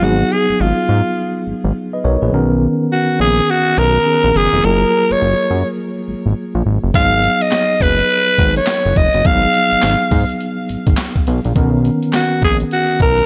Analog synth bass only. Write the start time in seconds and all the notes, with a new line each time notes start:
0.02 G#1
0.49 G#1
0.60 G#1
0.89 G#2
1.47 G#1
1.64 G#1
2.04 B1
2.22 A#1
2.33 B1
3.20 A#1
3.78 B1
4.24 A#1
4.35 F#1
4.53 F1
4.64 F#1
5.10 F#1
5.22 F#1
5.50 F#2
6.08 G#1
6.26 G#1
6.55 A#1
6.66 G#1
6.83 F#1
6.94 G#1
7.81 F#1
8.39 G#1
8.85 F#1
8.96 F1
9.14 F#1
9.25 G#1
9.72 G#1
9.83 G#1
10.11 G#2
10.70 G#1
10.87 G#1
11.27 B1
11.45 A#1
11.56 B1
12.42 A#1
13.00 B1